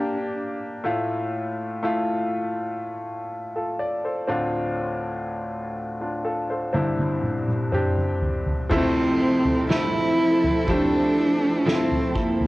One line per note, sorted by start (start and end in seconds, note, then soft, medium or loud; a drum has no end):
0.00 0.31 A#2 soft
0.00 0.31 F3 soft
0.00 0.86 A#3 medium
0.00 0.35 D4 medium
0.00 0.86 D4 medium
0.00 0.86 G4 medium
0.84 4.25 A2 medium
0.84 1.77 A3 medium
0.84 1.78 E4 medium
0.84 1.78 F4 medium
1.83 2.76 A3 medium
1.83 2.76 E4 medium
1.83 2.77 F4 medium
3.56 3.79 F4 soft
3.56 3.79 A4 soft
3.79 4.03 D5 medium
4.05 4.51 A4 soft
4.05 4.51 C5 soft
4.28 6.71 D2 medium
4.28 6.70 A2 medium
4.28 5.68 C4 medium
4.28 5.27 D4 medium
4.28 5.27 F4 medium
6.01 6.24 D4 soft
6.01 6.24 F4 soft
6.25 6.48 F4 soft
6.25 6.48 A4 medium
6.50 6.97 A4 soft
6.50 6.97 C5 soft
6.73 8.67 C2 medium
6.73 8.67 G2 medium
6.73 7.67 C4 medium
6.73 7.67 D4 medium
6.73 7.68 E4 medium
6.73 high tom soft
6.99 high tom soft
7.23 mid tom medium
7.48 mid tom medium
7.72 8.66 C4 medium
7.72 8.66 D4 medium
7.72 8.67 G4 medium
7.72 mid tom medium
7.97 mid tom medium
8.21 floor tom medium
8.46 floor tom medium
8.69 12.47 F2 medium
8.69 12.47 C3 medium
8.69 9.64 F3 medium
8.69 9.20 F3 medium
8.69 12.47 F3 medium
8.69 8.77 G#3 medium
8.69 9.21 A3 medium
8.69 12.47 C4 medium
8.69 9.21 C4 medium
8.69 9.67 C4 loud
8.69 9.65 E4 medium
8.69 12.47 E4 medium
8.69 9.20 E4 medium
8.69 12.47 A4 medium
8.69 9.19 A4 medium
8.69 kick loud
8.69 floor tom medium
8.69 crash medium
8.77 9.68 A3 medium
9.20 9.69 C4 soft
9.20 9.70 E4 soft
9.20 9.69 A4 soft
9.45 floor tom medium
9.69 10.63 F3 medium
9.69 10.19 F3 medium
9.69 10.63 A3 medium
9.69 10.19 A3 medium
9.69 10.19 C4 medium
9.69 10.63 E4 medium
9.69 10.18 E4 medium
9.69 10.72 E4 loud
9.69 10.17 A4 medium
9.69 snare loud
10.18 10.67 C4 soft
10.18 10.68 E4 soft
10.18 10.68 A4 medium
10.44 floor tom medium
10.67 11.61 F3 medium
10.67 11.65 A3 medium
10.67 11.62 A3 medium
10.67 11.66 C4 medium
10.67 11.71 D4 loud
10.67 11.66 E4 medium
10.67 11.62 G4 medium
10.67 11.66 A4 medium
10.67 kick medium
10.67 floor tom medium
11.66 12.15 F3 medium
11.66 12.47 F3 medium
11.66 12.15 A3 medium
11.66 12.16 C4 medium
11.66 12.20 C4 loud
11.66 12.15 E4 medium
11.66 12.47 E4 medium
11.66 12.47 A4 medium
11.66 12.13 A4 medium
11.66 snare medium
11.91 floor tom medium
12.15 12.47 A#3 medium
12.15 12.47 C4 soft
12.15 12.47 E4 soft
12.15 12.47 A4 soft
12.15 kick medium
12.40 floor tom medium